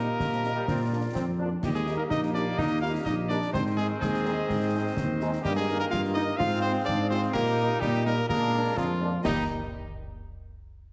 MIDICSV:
0, 0, Header, 1, 8, 480
1, 0, Start_track
1, 0, Key_signature, -3, "major"
1, 0, Tempo, 476190
1, 683, Time_signature, 2, 2, 24, 8
1, 11016, End_track
2, 0, Start_track
2, 0, Title_t, "Woodwind section"
2, 0, Program_c, 0, 71
2, 0, Note_on_c, 0, 67, 90
2, 0, Note_on_c, 0, 75, 88
2, 648, Note_off_c, 0, 75, 0
2, 686, Note_on_c, 0, 65, 80
2, 689, Note_off_c, 0, 67, 0
2, 691, Note_on_c, 0, 74, 79
2, 1365, Note_off_c, 0, 65, 0
2, 1407, Note_off_c, 0, 74, 0
2, 1655, Note_on_c, 0, 67, 83
2, 1656, Note_on_c, 0, 75, 86
2, 2096, Note_off_c, 0, 67, 0
2, 2097, Note_off_c, 0, 75, 0
2, 2115, Note_on_c, 0, 75, 74
2, 2122, Note_on_c, 0, 67, 77
2, 2566, Note_off_c, 0, 75, 0
2, 2569, Note_off_c, 0, 67, 0
2, 2583, Note_on_c, 0, 67, 86
2, 2585, Note_on_c, 0, 75, 88
2, 3039, Note_off_c, 0, 67, 0
2, 3040, Note_off_c, 0, 75, 0
2, 3074, Note_on_c, 0, 75, 82
2, 3079, Note_on_c, 0, 67, 79
2, 3525, Note_off_c, 0, 75, 0
2, 3527, Note_off_c, 0, 67, 0
2, 3549, Note_on_c, 0, 72, 86
2, 3550, Note_on_c, 0, 75, 83
2, 4003, Note_off_c, 0, 75, 0
2, 4015, Note_off_c, 0, 72, 0
2, 4022, Note_on_c, 0, 75, 96
2, 4027, Note_on_c, 0, 72, 104
2, 5432, Note_off_c, 0, 75, 0
2, 5435, Note_off_c, 0, 72, 0
2, 5486, Note_on_c, 0, 75, 110
2, 5488, Note_on_c, 0, 70, 100
2, 6404, Note_off_c, 0, 75, 0
2, 6405, Note_off_c, 0, 70, 0
2, 6440, Note_on_c, 0, 77, 119
2, 6447, Note_on_c, 0, 68, 112
2, 7360, Note_off_c, 0, 77, 0
2, 7393, Note_on_c, 0, 67, 111
2, 7394, Note_on_c, 0, 75, 103
2, 7404, Note_off_c, 0, 68, 0
2, 7843, Note_off_c, 0, 67, 0
2, 7875, Note_off_c, 0, 75, 0
2, 7885, Note_on_c, 0, 67, 91
2, 7887, Note_on_c, 0, 75, 92
2, 8330, Note_off_c, 0, 67, 0
2, 8330, Note_off_c, 0, 75, 0
2, 8364, Note_on_c, 0, 68, 97
2, 8369, Note_on_c, 0, 74, 107
2, 8809, Note_off_c, 0, 68, 0
2, 8815, Note_off_c, 0, 74, 0
2, 8827, Note_on_c, 0, 74, 82
2, 8833, Note_on_c, 0, 68, 83
2, 8938, Note_off_c, 0, 74, 0
2, 8942, Note_off_c, 0, 68, 0
2, 9313, Note_on_c, 0, 75, 107
2, 9318, Note_on_c, 0, 67, 100
2, 9516, Note_off_c, 0, 75, 0
2, 9520, Note_off_c, 0, 67, 0
2, 11016, End_track
3, 0, Start_track
3, 0, Title_t, "Cornet"
3, 0, Program_c, 1, 56
3, 0, Note_on_c, 1, 70, 113
3, 1403, Note_off_c, 1, 70, 0
3, 1647, Note_on_c, 1, 67, 109
3, 1700, Note_off_c, 1, 67, 0
3, 1765, Note_on_c, 1, 68, 98
3, 1983, Note_off_c, 1, 68, 0
3, 1989, Note_on_c, 1, 70, 93
3, 2046, Note_off_c, 1, 70, 0
3, 2117, Note_on_c, 1, 75, 108
3, 2227, Note_off_c, 1, 75, 0
3, 2356, Note_on_c, 1, 74, 102
3, 2604, Note_on_c, 1, 75, 116
3, 2619, Note_off_c, 1, 74, 0
3, 2831, Note_off_c, 1, 75, 0
3, 2837, Note_on_c, 1, 77, 108
3, 2946, Note_off_c, 1, 77, 0
3, 3070, Note_on_c, 1, 75, 102
3, 3181, Note_off_c, 1, 75, 0
3, 3308, Note_on_c, 1, 74, 106
3, 3539, Note_off_c, 1, 74, 0
3, 3559, Note_on_c, 1, 72, 114
3, 3668, Note_off_c, 1, 72, 0
3, 3795, Note_on_c, 1, 68, 112
3, 3904, Note_off_c, 1, 68, 0
3, 4041, Note_on_c, 1, 68, 107
3, 5201, Note_off_c, 1, 68, 0
3, 5477, Note_on_c, 1, 67, 119
3, 5591, Note_off_c, 1, 67, 0
3, 5604, Note_on_c, 1, 68, 117
3, 5826, Note_off_c, 1, 68, 0
3, 5842, Note_on_c, 1, 70, 127
3, 5896, Note_off_c, 1, 70, 0
3, 5951, Note_on_c, 1, 77, 124
3, 6062, Note_off_c, 1, 77, 0
3, 6187, Note_on_c, 1, 75, 113
3, 6419, Note_on_c, 1, 77, 127
3, 6434, Note_off_c, 1, 75, 0
3, 6661, Note_off_c, 1, 77, 0
3, 6667, Note_on_c, 1, 72, 127
3, 6778, Note_off_c, 1, 72, 0
3, 6905, Note_on_c, 1, 74, 127
3, 7136, Note_off_c, 1, 74, 0
3, 7157, Note_on_c, 1, 72, 127
3, 7266, Note_off_c, 1, 72, 0
3, 7391, Note_on_c, 1, 70, 127
3, 7864, Note_on_c, 1, 67, 127
3, 7879, Note_off_c, 1, 70, 0
3, 8113, Note_off_c, 1, 67, 0
3, 8124, Note_on_c, 1, 70, 121
3, 8346, Note_off_c, 1, 70, 0
3, 8357, Note_on_c, 1, 70, 127
3, 8845, Note_on_c, 1, 65, 111
3, 8860, Note_off_c, 1, 70, 0
3, 9312, Note_off_c, 1, 65, 0
3, 9318, Note_on_c, 1, 63, 115
3, 9519, Note_off_c, 1, 63, 0
3, 11016, End_track
4, 0, Start_track
4, 0, Title_t, "Euphonium"
4, 0, Program_c, 2, 58
4, 0, Note_on_c, 2, 58, 99
4, 1351, Note_off_c, 2, 58, 0
4, 1641, Note_on_c, 2, 55, 90
4, 1754, Note_off_c, 2, 55, 0
4, 1759, Note_on_c, 2, 56, 90
4, 1868, Note_off_c, 2, 56, 0
4, 2005, Note_on_c, 2, 58, 86
4, 2058, Note_off_c, 2, 58, 0
4, 2115, Note_on_c, 2, 63, 109
4, 2342, Note_off_c, 2, 63, 0
4, 2360, Note_on_c, 2, 62, 89
4, 2469, Note_off_c, 2, 62, 0
4, 2606, Note_on_c, 2, 63, 117
4, 2828, Note_off_c, 2, 63, 0
4, 2845, Note_on_c, 2, 65, 97
4, 2952, Note_off_c, 2, 65, 0
4, 3089, Note_on_c, 2, 63, 104
4, 3196, Note_off_c, 2, 63, 0
4, 3327, Note_on_c, 2, 62, 109
4, 3548, Note_off_c, 2, 62, 0
4, 3559, Note_on_c, 2, 60, 98
4, 3668, Note_off_c, 2, 60, 0
4, 3795, Note_on_c, 2, 56, 90
4, 4022, Note_off_c, 2, 56, 0
4, 4045, Note_on_c, 2, 56, 100
4, 5204, Note_off_c, 2, 56, 0
4, 5481, Note_on_c, 2, 55, 117
4, 5590, Note_off_c, 2, 55, 0
4, 5596, Note_on_c, 2, 56, 103
4, 5706, Note_off_c, 2, 56, 0
4, 5853, Note_on_c, 2, 58, 99
4, 5952, Note_off_c, 2, 58, 0
4, 5958, Note_on_c, 2, 65, 127
4, 6067, Note_off_c, 2, 65, 0
4, 6200, Note_on_c, 2, 63, 106
4, 6309, Note_off_c, 2, 63, 0
4, 6440, Note_on_c, 2, 65, 127
4, 6664, Note_off_c, 2, 65, 0
4, 6684, Note_on_c, 2, 60, 118
4, 6913, Note_on_c, 2, 62, 127
4, 6929, Note_off_c, 2, 60, 0
4, 7149, Note_off_c, 2, 62, 0
4, 7155, Note_on_c, 2, 60, 120
4, 7381, Note_off_c, 2, 60, 0
4, 7401, Note_on_c, 2, 58, 123
4, 7848, Note_off_c, 2, 58, 0
4, 7881, Note_on_c, 2, 55, 116
4, 8119, Note_on_c, 2, 58, 113
4, 8134, Note_off_c, 2, 55, 0
4, 8352, Note_off_c, 2, 58, 0
4, 8358, Note_on_c, 2, 58, 120
4, 8805, Note_off_c, 2, 58, 0
4, 8832, Note_on_c, 2, 53, 96
4, 9282, Note_off_c, 2, 53, 0
4, 9311, Note_on_c, 2, 51, 107
4, 9515, Note_off_c, 2, 51, 0
4, 11016, End_track
5, 0, Start_track
5, 0, Title_t, "French horn section"
5, 0, Program_c, 3, 60
5, 452, Note_on_c, 3, 55, 69
5, 452, Note_on_c, 3, 58, 71
5, 453, Note_on_c, 3, 63, 70
5, 537, Note_off_c, 3, 55, 0
5, 537, Note_off_c, 3, 58, 0
5, 537, Note_off_c, 3, 63, 0
5, 921, Note_on_c, 3, 58, 60
5, 923, Note_on_c, 3, 53, 58
5, 925, Note_on_c, 3, 62, 56
5, 1008, Note_off_c, 3, 58, 0
5, 1010, Note_off_c, 3, 53, 0
5, 1011, Note_off_c, 3, 62, 0
5, 1404, Note_on_c, 3, 53, 67
5, 1406, Note_on_c, 3, 58, 64
5, 1409, Note_on_c, 3, 62, 68
5, 1491, Note_off_c, 3, 53, 0
5, 1492, Note_off_c, 3, 58, 0
5, 1494, Note_off_c, 3, 62, 0
5, 1885, Note_on_c, 3, 55, 64
5, 1888, Note_on_c, 3, 58, 64
5, 1890, Note_on_c, 3, 63, 75
5, 1971, Note_off_c, 3, 55, 0
5, 1974, Note_off_c, 3, 58, 0
5, 1975, Note_off_c, 3, 63, 0
5, 2371, Note_on_c, 3, 55, 76
5, 2371, Note_on_c, 3, 63, 76
5, 2373, Note_on_c, 3, 58, 73
5, 2455, Note_off_c, 3, 63, 0
5, 2456, Note_off_c, 3, 55, 0
5, 2457, Note_off_c, 3, 58, 0
5, 2852, Note_on_c, 3, 58, 70
5, 2854, Note_on_c, 3, 63, 76
5, 2856, Note_on_c, 3, 55, 73
5, 2937, Note_off_c, 3, 58, 0
5, 2938, Note_off_c, 3, 63, 0
5, 2939, Note_off_c, 3, 55, 0
5, 3315, Note_on_c, 3, 58, 71
5, 3318, Note_on_c, 3, 55, 74
5, 3318, Note_on_c, 3, 63, 80
5, 3403, Note_off_c, 3, 58, 0
5, 3406, Note_off_c, 3, 55, 0
5, 3406, Note_off_c, 3, 63, 0
5, 3806, Note_on_c, 3, 63, 75
5, 3808, Note_on_c, 3, 56, 70
5, 3809, Note_on_c, 3, 60, 72
5, 3892, Note_off_c, 3, 63, 0
5, 3894, Note_off_c, 3, 56, 0
5, 3894, Note_off_c, 3, 60, 0
5, 4285, Note_on_c, 3, 63, 81
5, 4286, Note_on_c, 3, 56, 79
5, 4287, Note_on_c, 3, 60, 81
5, 4371, Note_off_c, 3, 63, 0
5, 4372, Note_off_c, 3, 56, 0
5, 4373, Note_off_c, 3, 60, 0
5, 4766, Note_on_c, 3, 56, 83
5, 4770, Note_on_c, 3, 63, 77
5, 4771, Note_on_c, 3, 60, 75
5, 4852, Note_off_c, 3, 56, 0
5, 4855, Note_off_c, 3, 60, 0
5, 4855, Note_off_c, 3, 63, 0
5, 5254, Note_on_c, 3, 63, 88
5, 5256, Note_on_c, 3, 56, 89
5, 5258, Note_on_c, 3, 60, 80
5, 5338, Note_off_c, 3, 63, 0
5, 5339, Note_off_c, 3, 56, 0
5, 5341, Note_off_c, 3, 60, 0
5, 5730, Note_on_c, 3, 63, 84
5, 5731, Note_on_c, 3, 58, 86
5, 5732, Note_off_c, 3, 58, 0
5, 5732, Note_on_c, 3, 58, 85
5, 5815, Note_off_c, 3, 63, 0
5, 5816, Note_off_c, 3, 58, 0
5, 6199, Note_on_c, 3, 58, 89
5, 6200, Note_off_c, 3, 58, 0
5, 6200, Note_on_c, 3, 58, 85
5, 6201, Note_on_c, 3, 63, 99
5, 6287, Note_off_c, 3, 58, 0
5, 6288, Note_off_c, 3, 63, 0
5, 6679, Note_on_c, 3, 56, 81
5, 6679, Note_on_c, 3, 60, 92
5, 6679, Note_on_c, 3, 65, 85
5, 6766, Note_off_c, 3, 56, 0
5, 6766, Note_off_c, 3, 60, 0
5, 6766, Note_off_c, 3, 65, 0
5, 7155, Note_on_c, 3, 56, 90
5, 7157, Note_on_c, 3, 60, 91
5, 7162, Note_on_c, 3, 65, 88
5, 7243, Note_off_c, 3, 56, 0
5, 7244, Note_off_c, 3, 60, 0
5, 7248, Note_off_c, 3, 65, 0
5, 7639, Note_on_c, 3, 58, 84
5, 7640, Note_on_c, 3, 55, 83
5, 7641, Note_on_c, 3, 63, 83
5, 7726, Note_off_c, 3, 58, 0
5, 7727, Note_off_c, 3, 55, 0
5, 7727, Note_off_c, 3, 63, 0
5, 8112, Note_on_c, 3, 55, 90
5, 8113, Note_on_c, 3, 58, 84
5, 8113, Note_on_c, 3, 63, 84
5, 8200, Note_off_c, 3, 55, 0
5, 8201, Note_off_c, 3, 58, 0
5, 8201, Note_off_c, 3, 63, 0
5, 8594, Note_on_c, 3, 62, 81
5, 8595, Note_on_c, 3, 58, 78
5, 8596, Note_on_c, 3, 56, 69
5, 8682, Note_off_c, 3, 58, 0
5, 8682, Note_off_c, 3, 62, 0
5, 8683, Note_off_c, 3, 56, 0
5, 9074, Note_on_c, 3, 58, 76
5, 9074, Note_on_c, 3, 62, 73
5, 9075, Note_on_c, 3, 56, 79
5, 9161, Note_off_c, 3, 58, 0
5, 9161, Note_off_c, 3, 62, 0
5, 9163, Note_off_c, 3, 56, 0
5, 9314, Note_on_c, 3, 55, 98
5, 9314, Note_on_c, 3, 58, 89
5, 9316, Note_on_c, 3, 63, 89
5, 9517, Note_off_c, 3, 55, 0
5, 9517, Note_off_c, 3, 58, 0
5, 9518, Note_off_c, 3, 63, 0
5, 11016, End_track
6, 0, Start_track
6, 0, Title_t, "Trombone section"
6, 0, Program_c, 4, 61
6, 210, Note_on_c, 4, 51, 82
6, 263, Note_off_c, 4, 51, 0
6, 324, Note_on_c, 4, 53, 69
6, 432, Note_off_c, 4, 53, 0
6, 557, Note_on_c, 4, 55, 87
6, 672, Note_off_c, 4, 55, 0
6, 680, Note_on_c, 4, 60, 101
6, 789, Note_off_c, 4, 60, 0
6, 919, Note_on_c, 4, 58, 70
6, 1028, Note_off_c, 4, 58, 0
6, 1142, Note_on_c, 4, 60, 91
6, 1255, Note_off_c, 4, 60, 0
6, 1402, Note_on_c, 4, 62, 86
6, 1510, Note_off_c, 4, 62, 0
6, 1611, Note_on_c, 4, 58, 100
6, 1615, Note_on_c, 4, 55, 91
6, 3507, Note_off_c, 4, 58, 0
6, 3509, Note_off_c, 4, 55, 0
6, 3568, Note_on_c, 4, 51, 108
6, 3571, Note_on_c, 4, 60, 105
6, 5445, Note_off_c, 4, 51, 0
6, 5447, Note_off_c, 4, 60, 0
6, 5466, Note_on_c, 4, 58, 96
6, 5470, Note_on_c, 4, 51, 107
6, 6396, Note_off_c, 4, 51, 0
6, 6417, Note_on_c, 4, 60, 106
6, 6422, Note_on_c, 4, 56, 99
6, 6434, Note_off_c, 4, 58, 0
6, 7349, Note_off_c, 4, 60, 0
6, 7351, Note_off_c, 4, 56, 0
6, 7386, Note_on_c, 4, 63, 109
6, 7387, Note_on_c, 4, 55, 114
6, 8190, Note_off_c, 4, 55, 0
6, 8190, Note_off_c, 4, 63, 0
6, 8361, Note_on_c, 4, 62, 98
6, 8367, Note_on_c, 4, 56, 105
6, 9040, Note_off_c, 4, 62, 0
6, 9083, Note_off_c, 4, 56, 0
6, 9317, Note_on_c, 4, 55, 101
6, 9318, Note_on_c, 4, 63, 110
6, 9519, Note_off_c, 4, 55, 0
6, 9520, Note_off_c, 4, 63, 0
6, 11016, End_track
7, 0, Start_track
7, 0, Title_t, "Tuba"
7, 0, Program_c, 5, 58
7, 0, Note_on_c, 5, 46, 91
7, 123, Note_off_c, 5, 46, 0
7, 207, Note_on_c, 5, 46, 80
7, 605, Note_off_c, 5, 46, 0
7, 682, Note_on_c, 5, 46, 94
7, 1082, Note_off_c, 5, 46, 0
7, 1160, Note_on_c, 5, 41, 80
7, 1562, Note_off_c, 5, 41, 0
7, 1640, Note_on_c, 5, 39, 99
7, 2042, Note_off_c, 5, 39, 0
7, 2125, Note_on_c, 5, 34, 85
7, 2524, Note_off_c, 5, 34, 0
7, 2597, Note_on_c, 5, 39, 96
7, 3000, Note_off_c, 5, 39, 0
7, 3074, Note_on_c, 5, 34, 94
7, 3436, Note_off_c, 5, 34, 0
7, 3558, Note_on_c, 5, 44, 104
7, 3960, Note_off_c, 5, 44, 0
7, 4046, Note_on_c, 5, 39, 91
7, 4445, Note_off_c, 5, 39, 0
7, 4522, Note_on_c, 5, 44, 98
7, 4922, Note_off_c, 5, 44, 0
7, 5009, Note_on_c, 5, 39, 93
7, 5406, Note_off_c, 5, 39, 0
7, 5489, Note_on_c, 5, 43, 114
7, 5886, Note_off_c, 5, 43, 0
7, 5972, Note_on_c, 5, 43, 111
7, 6367, Note_off_c, 5, 43, 0
7, 6453, Note_on_c, 5, 44, 119
7, 6847, Note_off_c, 5, 44, 0
7, 6929, Note_on_c, 5, 44, 115
7, 7325, Note_off_c, 5, 44, 0
7, 7393, Note_on_c, 5, 46, 116
7, 7797, Note_off_c, 5, 46, 0
7, 7879, Note_on_c, 5, 46, 116
7, 8280, Note_off_c, 5, 46, 0
7, 8360, Note_on_c, 5, 46, 108
7, 8760, Note_off_c, 5, 46, 0
7, 8842, Note_on_c, 5, 41, 87
7, 9241, Note_off_c, 5, 41, 0
7, 9309, Note_on_c, 5, 39, 111
7, 9514, Note_off_c, 5, 39, 0
7, 11016, End_track
8, 0, Start_track
8, 0, Title_t, "Drums"
8, 200, Note_on_c, 9, 35, 80
8, 200, Note_on_c, 9, 38, 83
8, 301, Note_off_c, 9, 35, 0
8, 301, Note_off_c, 9, 38, 0
8, 323, Note_on_c, 9, 38, 54
8, 424, Note_off_c, 9, 38, 0
8, 441, Note_on_c, 9, 38, 59
8, 542, Note_off_c, 9, 38, 0
8, 684, Note_on_c, 9, 35, 88
8, 684, Note_on_c, 9, 38, 66
8, 785, Note_off_c, 9, 35, 0
8, 785, Note_off_c, 9, 38, 0
8, 1161, Note_on_c, 9, 35, 86
8, 1161, Note_on_c, 9, 38, 78
8, 1262, Note_off_c, 9, 35, 0
8, 1262, Note_off_c, 9, 38, 0
8, 1642, Note_on_c, 9, 35, 83
8, 1642, Note_on_c, 9, 38, 70
8, 1642, Note_on_c, 9, 49, 53
8, 1743, Note_off_c, 9, 35, 0
8, 1743, Note_off_c, 9, 38, 0
8, 1743, Note_off_c, 9, 49, 0
8, 1759, Note_on_c, 9, 38, 56
8, 1860, Note_off_c, 9, 38, 0
8, 1880, Note_on_c, 9, 38, 59
8, 1981, Note_off_c, 9, 38, 0
8, 2123, Note_on_c, 9, 35, 77
8, 2123, Note_on_c, 9, 38, 80
8, 2224, Note_off_c, 9, 35, 0
8, 2224, Note_off_c, 9, 38, 0
8, 2245, Note_on_c, 9, 38, 57
8, 2346, Note_off_c, 9, 38, 0
8, 2368, Note_on_c, 9, 38, 57
8, 2469, Note_off_c, 9, 38, 0
8, 2602, Note_on_c, 9, 35, 89
8, 2602, Note_on_c, 9, 38, 67
8, 2703, Note_off_c, 9, 35, 0
8, 2703, Note_off_c, 9, 38, 0
8, 3081, Note_on_c, 9, 35, 78
8, 3081, Note_on_c, 9, 38, 77
8, 3182, Note_off_c, 9, 35, 0
8, 3182, Note_off_c, 9, 38, 0
8, 3328, Note_on_c, 9, 38, 61
8, 3428, Note_off_c, 9, 38, 0
8, 3445, Note_on_c, 9, 38, 58
8, 3546, Note_off_c, 9, 38, 0
8, 3569, Note_on_c, 9, 35, 89
8, 3569, Note_on_c, 9, 38, 75
8, 3569, Note_on_c, 9, 49, 32
8, 3670, Note_off_c, 9, 35, 0
8, 3670, Note_off_c, 9, 38, 0
8, 3670, Note_off_c, 9, 49, 0
8, 3691, Note_on_c, 9, 38, 54
8, 3791, Note_off_c, 9, 38, 0
8, 3812, Note_on_c, 9, 38, 62
8, 3913, Note_off_c, 9, 38, 0
8, 4050, Note_on_c, 9, 35, 83
8, 4050, Note_on_c, 9, 38, 83
8, 4151, Note_off_c, 9, 35, 0
8, 4151, Note_off_c, 9, 38, 0
8, 4172, Note_on_c, 9, 38, 59
8, 4273, Note_off_c, 9, 38, 0
8, 4286, Note_on_c, 9, 38, 65
8, 4386, Note_off_c, 9, 38, 0
8, 4532, Note_on_c, 9, 35, 80
8, 4532, Note_on_c, 9, 38, 74
8, 4633, Note_off_c, 9, 35, 0
8, 4633, Note_off_c, 9, 38, 0
8, 5007, Note_on_c, 9, 35, 85
8, 5007, Note_on_c, 9, 38, 87
8, 5108, Note_off_c, 9, 35, 0
8, 5108, Note_off_c, 9, 38, 0
8, 5246, Note_on_c, 9, 38, 62
8, 5346, Note_off_c, 9, 38, 0
8, 5367, Note_on_c, 9, 38, 60
8, 5468, Note_off_c, 9, 38, 0
8, 5491, Note_on_c, 9, 35, 91
8, 5491, Note_on_c, 9, 38, 76
8, 5491, Note_on_c, 9, 49, 31
8, 5592, Note_off_c, 9, 35, 0
8, 5592, Note_off_c, 9, 38, 0
8, 5592, Note_off_c, 9, 49, 0
8, 5619, Note_on_c, 9, 38, 59
8, 5720, Note_off_c, 9, 38, 0
8, 5733, Note_on_c, 9, 38, 63
8, 5833, Note_off_c, 9, 38, 0
8, 5973, Note_on_c, 9, 35, 82
8, 5973, Note_on_c, 9, 38, 81
8, 6073, Note_off_c, 9, 35, 0
8, 6073, Note_off_c, 9, 38, 0
8, 6094, Note_on_c, 9, 38, 55
8, 6194, Note_off_c, 9, 38, 0
8, 6218, Note_on_c, 9, 38, 62
8, 6318, Note_off_c, 9, 38, 0
8, 6449, Note_on_c, 9, 35, 95
8, 6449, Note_on_c, 9, 38, 72
8, 6550, Note_off_c, 9, 35, 0
8, 6550, Note_off_c, 9, 38, 0
8, 6930, Note_on_c, 9, 35, 90
8, 6930, Note_on_c, 9, 38, 81
8, 7031, Note_off_c, 9, 35, 0
8, 7031, Note_off_c, 9, 38, 0
8, 7167, Note_on_c, 9, 38, 62
8, 7268, Note_off_c, 9, 38, 0
8, 7282, Note_on_c, 9, 38, 58
8, 7382, Note_off_c, 9, 38, 0
8, 7401, Note_on_c, 9, 35, 82
8, 7401, Note_on_c, 9, 38, 80
8, 7401, Note_on_c, 9, 49, 36
8, 7502, Note_off_c, 9, 35, 0
8, 7502, Note_off_c, 9, 38, 0
8, 7502, Note_off_c, 9, 49, 0
8, 7520, Note_on_c, 9, 38, 56
8, 7621, Note_off_c, 9, 38, 0
8, 7639, Note_on_c, 9, 38, 65
8, 7740, Note_off_c, 9, 38, 0
8, 7878, Note_on_c, 9, 35, 86
8, 7878, Note_on_c, 9, 38, 83
8, 7979, Note_off_c, 9, 35, 0
8, 7979, Note_off_c, 9, 38, 0
8, 8004, Note_on_c, 9, 38, 59
8, 8105, Note_off_c, 9, 38, 0
8, 8122, Note_on_c, 9, 38, 61
8, 8222, Note_off_c, 9, 38, 0
8, 8359, Note_on_c, 9, 35, 90
8, 8359, Note_on_c, 9, 38, 66
8, 8460, Note_off_c, 9, 35, 0
8, 8460, Note_off_c, 9, 38, 0
8, 8841, Note_on_c, 9, 35, 80
8, 8841, Note_on_c, 9, 38, 87
8, 8942, Note_off_c, 9, 35, 0
8, 8942, Note_off_c, 9, 38, 0
8, 9322, Note_on_c, 9, 35, 112
8, 9322, Note_on_c, 9, 38, 95
8, 9322, Note_on_c, 9, 49, 82
8, 9423, Note_off_c, 9, 35, 0
8, 9423, Note_off_c, 9, 38, 0
8, 9423, Note_off_c, 9, 49, 0
8, 11016, End_track
0, 0, End_of_file